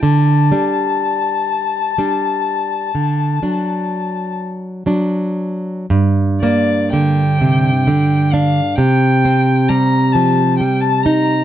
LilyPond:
<<
  \new Staff \with { instrumentName = "Violin" } { \time 12/8 \key g \minor \tempo 4. = 42 a''1~ a''8 r4. | r8 d''8 g''4. f''8 g''4 bes''8 a''8 g''16 a''16 bes''8 | }
  \new Staff \with { instrumentName = "Nylon-string guitar" } { \clef bass \time 12/8 \key g \minor d8 <g d'>4. <g d'>4 d8 <fis d'>4. <fis d'>4 | g,8 bes8 d8 c8 d8 d'8 c8 c'8 g8 f8 g8 ees'8 | }
>>